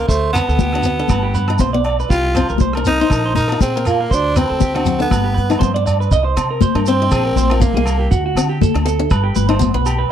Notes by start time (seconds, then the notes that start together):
0.08 D2 A3 C5, kick, muted conga, shekere
0.33 B3 C4 B4, cross-stick, closed hi-hat, muted conga, low agogo, shekere
0.49 D2 A4, shekere
0.59 G4, kick, high conga, shekere
0.73 D4 F#4, cross-stick, low agogo
0.83 C4, closed hi-hat, muted conga, shekere
0.99 D4 A4
1.08 G1 B4, kick, cross-stick, muted conga, high conga, low agogo, shekere
1.23 G4
1.35 G2 B4, closed hi-hat, shekere
1.48 D#4, cross-stick, low agogo
1.59 B1 C4 C5, kick, high conga, shekere
1.73 B3 D5
1.84 D5, closed hi-hat, low agogo
2.00 B4, shekere
2.09 C2 F4 G4, kick, muted conga, shekere
2.35 C4 C5, cross-stick, closed hi-hat, muted conga, low agogo, shekere
2.49 C2 A#4, shekere
2.58 C5, kick, high conga, shekere
2.73 D4 A#4, cross-stick, low agogo
2.85 C4 D#4, closed hi-hat, shekere
3.01 D#4 C5
3.10 A#1 A#4, kick, cross-stick, muted conga, low agogo, shekere
3.25 C5
3.35 A#2 D#4 A#4, closed hi-hat, high conga, shekere
3.48 cross-stick, low agogo
3.52 F4
3.60 A#2 C4 G#4, kick, high conga, shekere
3.76 A#3 A#4
3.85 A#3 F4, cross-stick, closed hi-hat, low agogo, shekere
4.01 A#4
4.10 D2 D4 C5, kick, muted conga, shekere
4.35 C4 B4, cross-stick, closed hi-hat, muted conga, low agogo, shekere
4.49 D2 A4
4.60 G4, kick, high conga, shekere
4.75 D4 F#4, cross-stick, low agogo
4.85 C4, closed hi-hat, muted conga, low conga, shekere
4.99 B3 D4 A4, shekere
5.10 G1 B4, kick, cross-stick, muted conga, high conga, low agogo, shekere
5.24 G4
5.34 G2 B4, closed hi-hat
5.50 D#4, cross-stick, low agogo, shekere
5.59 G2 C4 C5, kick, high conga, low conga, shekere
5.74 B3 D5
5.86 D5, closed hi-hat, low agogo, shekere
6.00 B4, shekere
6.10 C2 D#5, kick, muted conga, shekere
6.24 C5
6.37 C3 C4, cross-stick, closed hi-hat, low agogo, shekere
6.51 A#4
6.61 C5, kick, muted conga, high conga, shekere
6.75 G2 D4 A#4, cross-stick, low agogo
6.86 C4 C5, closed hi-hat, shekere
7.02 D#4
7.11 A#1 G#4, kick, cross-stick, low agogo, shekere
7.25 A#4
7.36 A#1 C5, closed hi-hat, muted conga, high conga, shekere
7.50 F4 A#4, cross-stick, low agogo
7.60 A#3 C4, kick, high conga, shekere
7.74 C2 A#3 G#4
7.86 A#4, cross-stick, closed hi-hat, low agogo, shekere
8.00 G4
8.10 D2 F#4, kick, muted conga, shekere
8.26 F#4
8.35 D3 C4, cross-stick, closed hi-hat, low agogo, shekere
8.49 G4
8.61 A4, kick, muted conga, high conga, shekere
8.74 D2 D4, cross-stick, low agogo
8.85 C4 A4, closed hi-hat, shekere
8.99 D4
9.10 G1 B4, kick, cross-stick, muted conga, low agogo, shekere
9.24 G4
9.36 G1 B4, closed hi-hat, muted conga, high conga, shekere
9.49 D#4 C5, cross-stick, low agogo
9.59 B3, kick, high conga, shekere
9.74 B1 B3 B4
9.86 G4, closed hi-hat, low agogo, shekere
9.99 B4